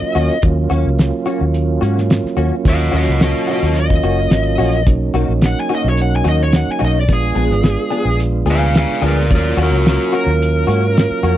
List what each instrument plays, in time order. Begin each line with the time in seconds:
Already playing: tonewheel organ F#3 A#3 C#4 F4, lead electric guitar D#5
0.02 muted fingered electric bass stroke
0.15 fingered electric bass D#2, clean electric guitar A#3 C#4 F#4, closed hi-hat
0.30 closed hi-hat
0.42 fingered electric bass D#2, tonewheel organ F#3 A#3 C#4 F4, kick, closed hi-hat
0.70 fingered electric bass D#2, clean electric guitar A#3 C#4 F#4, closed hi-hat
0.86 fingered electric bass C#2
0.99 snare, closed hi-hat
1.26 clean electric guitar A#3 C#4 F#4, closed hi-hat
1.41 fingered electric bass D#2
1.54 closed hi-hat
1.81 fingered electric bass G#2, clean electric guitar A#3 C#4 F#4, closed hi-hat
1.98 snare
2.10 snare, closed hi-hat
2.24 muted fingered electric bass stroke, snare
2.37 fingered electric bass D#2, clean electric guitar A#3 C#4 F#4, closed hi-hat
2.65 fingered electric bass D#2, lead electric guitar D#5 F#5, kick, closed hi-hat
2.80 closed hi-hat
2.92 fingered electric bass D#2, clean electric guitar A#3 C#4 F#4, closed hi-hat
2.97 lead electric guitar D#5 F#5
3.08 fingered electric bass C#2
3.20 lead electric guitar F#4 D#5, snare, closed hi-hat
3.47 clean electric guitar A#3 C#4 F#4, closed hi-hat
3.52 lead electric guitar F#4 D#5
3.63 fingered electric bass D#2, closed hi-hat
3.76 closed hi-hat
3.80 lead electric guitar D#5
3.90 kick, snare
4.03 fingered electric bass F#1, clean electric guitar A#3 C#4 F#4, closed hi-hat
4.31 fingered electric bass G#1, snare, closed hi-hat
4.58 fingered electric bass A#1, clean electric guitar A#3 C#4 F#4, open hi-hat
4.73 closed hi-hat
4.86 fingered electric bass B1, tonewheel organ F#3 A#3 C#4 D#4, kick, closed hi-hat
5.14 fingered electric bass B1, clean electric guitar F#3 A#3 D#4 F#4, closed hi-hat
5.29 fingered electric bass A#1
5.42 snare, closed hi-hat
5.46 lead electric guitar F#5
5.60 lead electric guitar G#5
5.69 clean electric guitar F#3 A#3 D#4 F#4, closed hi-hat
5.75 lead electric guitar D#5
5.84 fingered electric bass B1
5.89 lead electric guitar C#5
5.97 closed hi-hat
6.02 lead electric guitar F#5
6.16 lead electric guitar G#5
6.24 fingered electric bass D#2, clean electric guitar F#3 A#3 D#4 F#4, closed hi-hat
6.29 lead electric guitar D#5
6.43 lead electric guitar C#5
6.52 lead electric guitar F#5, snare, closed hi-hat
6.67 muted fingered electric bass stroke
6.72 lead electric guitar G#5
6.79 fingered electric bass B1, clean electric guitar F#3 A#3 D#4 F#4, closed hi-hat
6.85 lead electric guitar D#5
6.99 lead electric guitar D5
7.08 fingered electric bass A#1, tonewheel organ G#3 B3 D4 F4, kick, closed hi-hat
7.13 lead electric guitar G#4
7.23 closed hi-hat
7.35 fingered electric bass A#1, clean electric guitar F3 B3 D4 G#4, closed hi-hat
7.50 fingered electric bass G#1, snare
7.63 snare, closed hi-hat
7.91 clean electric guitar F3 B3 D4 G#4, closed hi-hat
8.05 fingered electric bass A#1, closed hi-hat
8.20 closed hi-hat
8.46 fingered electric bass D2, clean electric guitar F3 B3 D4 G#4, closed hi-hat
8.51 lead electric guitar F5 G#5
8.75 lead electric guitar F5 G#5, snare, closed hi-hat
9.02 fingered electric bass D2, clean electric guitar F3 B3 D4 G#4, closed hi-hat
9.06 lead electric guitar A#4 D5
9.18 closed hi-hat
9.30 fingered electric bass D#2, tonewheel organ F#3 A#3 C#4 F4, kick, closed hi-hat
9.35 lead electric guitar A#4 D5
9.57 fingered electric bass D#2, clean electric guitar A#3 C#4 F#4, closed hi-hat
9.62 lead electric guitar F#4 A#4
9.72 fingered electric bass C#2
9.86 lead electric guitar F#4 A#4, snare, closed hi-hat
10.12 clean electric guitar A#3 C#4 F#4, lead electric guitar A#4, closed hi-hat
10.26 fingered electric bass D#2
10.42 closed hi-hat
10.67 fingered electric bass G#2, clean electric guitar A#3 C#4 F#4, closed hi-hat
10.97 snare, closed hi-hat
11.10 muted fingered electric bass stroke
11.23 fingered electric bass F2, clean electric guitar A#3 C#4 F#4, closed hi-hat